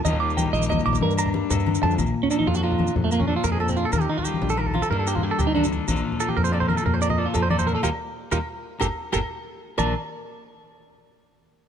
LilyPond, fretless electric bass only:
\new Staff \with { instrumentName = "Fretless electric bass" } { \clef bass \time 12/8 \key bes \major \tempo 4. = 123 ees,4. bes,,4 bes,,8 g,4. g,4 f,8 | bes,,8 r4 f,4. f,4. f,4. | ees,8 r4 bes,,4. g,4. d,4. | bes,,8 r4 f,4. f,4. f,4. |
ees,8 r4 ees,8 r4 g,,8 r8 g,,8 r4. | bes,,8 r1 r4. | }